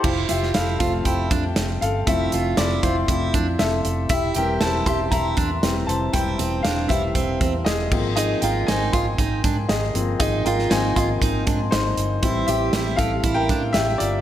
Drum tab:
CC |x---------------|----------------|----------------|--------------x-|
HH |--x-x-x-x-x-x-x-|x-x-x-x-x-x-x-x-|x-x-x-x-x-x-x-x-|x-x-x-x-x-x-x---|
SD |---oo-------o---|----o-------o---|----o-------o---|----o-------o---|
BD |o-----o-o-o-----|o-----o-o-o-----|o-----o-o-o-----|o-----o-o-o---o-|

CC |----------------|----------------|----------------|
HH |x-x-x-x-x-x-x-x-|x-x-x-x-x-x-x-x-|x-x-x-x-x-x-x-x-|
SD |----o-------o---|---oo-------o---|----o-------o---|
BD |------o-o-o-----|o-----o-o-o-----|o-----o-o-o-----|